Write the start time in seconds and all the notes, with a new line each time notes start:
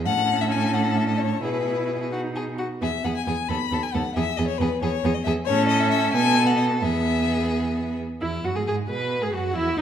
0.06 A2 C#4 A4 F#5
0.41 E5
0.52 G#5
0.74 F#5
0.97 E5
1.09 D#5
1.19 C#5
1.43 B2 E4 G#4 B4
2.12 D#4 F#4
2.36 G#4
2.59 F#4
2.81 E2 B3 G#4 E5
3.03 E2 B3 G#4 F#5
3.16 G#5
3.26 E2 B3 G#4 G#5
3.48 D#2 B3 A4 B5
3.72 D#2 B3 A4
3.83 G#5
3.93 D#2 B3 A4 F#5
4.15 E2 B3 G#4 E5
4.37 E2 B3 G#4 D#5
4.47 C#5
4.58 E2 B3 G#4 B4
4.82 E2 B3 G#4 C#5
5.04 E2 B3 G#4
5.15 D#5
5.24 E2 B3 G#4 E5
5.45 A2 C#4 C#5
5.49 A4
5.68 D#5
5.80 E5
5.90 E5
6.13 B2 B3 A4 G#5
6.47 F#5
6.57 D#5
6.81 E2 B3 G#4 E5
8.21 E2 E4
8.44 F#2 F#4
8.56 G#2 G#4
8.67 G#2 G#4
8.89 B2 F#4 B4
9.22 G#2 G#4
9.33 F#2 F#4
9.55 E2 E4
9.78 D#2 D#4